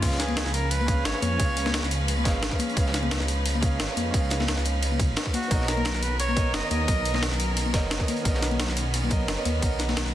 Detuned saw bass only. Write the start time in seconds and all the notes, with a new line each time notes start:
0.02 C#2
0.46 C#2
1.05 G#1
1.23 F2
1.40 C#2
1.83 C#2
2.25 G#1
2.42 G#1
2.77 C#2
3.20 C#2
3.80 G#1
3.97 F2
4.14 C#2
4.57 C#2
5.09 G#1
5.51 B1
5.94 B1
6.54 F#1
6.71 D#2
6.88 B1
7.31 B1
7.74 F#1
7.91 F#1
8.25 B1
8.69 B1
9.28 F#1
9.45 D#2
9.62 B1
10.06 B1